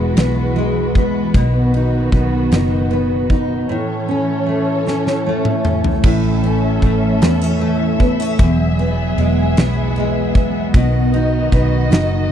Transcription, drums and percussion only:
0.17 snare loud
0.17 ride medium
0.56 ride soft
0.95 kick medium
0.95 ride soft
1.34 kick loud
1.34 ride medium
1.74 ride soft
2.12 kick medium
2.12 ride soft
2.52 snare loud
2.52 ride medium
2.91 ride soft
3.30 kick medium
3.30 ride soft
4.87 snare medium
5.07 snare medium
5.45 mid tom medium
5.65 mid tom medium
5.84 floor tom medium
6.03 kick loud
6.03 crash loud
6.44 ride soft
6.82 kick medium
6.82 ride soft
7.22 snare loud
7.22 ride medium
7.61 ride soft
8.00 kick medium
8.00 ride soft
8.39 kick loud
8.39 ride medium
8.79 ride soft
9.18 ride soft
9.57 snare loud
9.57 ride medium
9.96 ride soft
10.35 kick medium
10.35 ride soft
10.74 kick loud
10.74 ride medium
11.14 ride soft
11.52 kick medium
11.52 ride soft
11.92 snare loud
11.92 ride medium

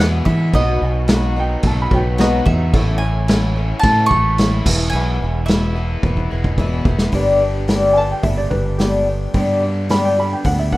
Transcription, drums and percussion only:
0.00 snare loud
0.26 kick medium
0.53 kick loud
0.53 crash medium
1.08 snare loud
1.08 crash medium
1.63 kick loud
1.63 crash medium
1.91 kick loud
2.18 snare loud
2.18 crash medium
2.46 kick loud
2.74 kick loud
2.74 crash medium
3.28 snare loud
3.28 crash medium
3.83 kick loud
3.83 crash medium
4.11 kick loud
4.38 snare loud
4.38 crash medium
4.66 kick loud
4.66 crash loud
4.93 crash medium
5.48 snare loud
5.48 crash medium
6.03 kick loud
6.17 kick medium
6.44 kick medium
6.58 kick medium
6.85 kick loud
6.99 snare medium
7.12 kick medium
7.12 open hi-hat soft
7.68 snare loud
7.68 open hi-hat medium
8.23 kick loud
8.23 open hi-hat soft
8.51 kick medium
8.79 snare loud
8.79 open hi-hat soft
9.34 kick loud
9.34 open hi-hat soft
9.89 snare loud
9.89 open hi-hat medium
10.44 kick loud
10.44 open hi-hat medium
10.72 kick medium

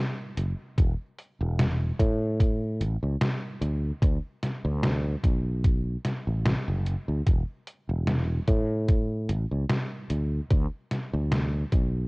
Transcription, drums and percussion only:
0.37 closed hi-hat medium
0.78 kick loud
0.78 closed hi-hat medium
1.18 closed hi-hat medium
1.59 snare loud
1.59 closed hi-hat medium
1.99 kick loud
1.99 closed hi-hat medium
2.40 kick loud
2.40 closed hi-hat medium
2.81 closed hi-hat medium
3.21 snare loud
3.21 closed hi-hat medium
3.62 closed hi-hat medium
4.02 kick loud
4.02 closed hi-hat medium
4.43 snare medium
4.43 closed hi-hat medium
4.83 snare loud
4.83 closed hi-hat medium
5.24 kick loud
5.24 closed hi-hat medium
5.64 kick loud
5.64 closed hi-hat medium
6.05 snare medium
6.05 closed hi-hat medium
6.45 snare loud
6.45 closed hi-hat medium
6.86 closed hi-hat medium
7.26 kick loud
7.26 closed hi-hat medium
7.67 closed hi-hat medium
8.07 snare loud
8.07 closed hi-hat medium
8.48 kick loud
8.48 closed hi-hat medium
8.88 kick loud
8.88 closed hi-hat medium
9.29 closed hi-hat medium
9.69 snare loud
9.69 closed hi-hat medium
10.10 closed hi-hat medium
10.51 kick loud
10.51 closed hi-hat medium
10.91 snare medium
10.91 closed hi-hat medium
11.32 snare loud
11.32 closed hi-hat medium
11.72 kick loud
11.72 closed hi-hat medium

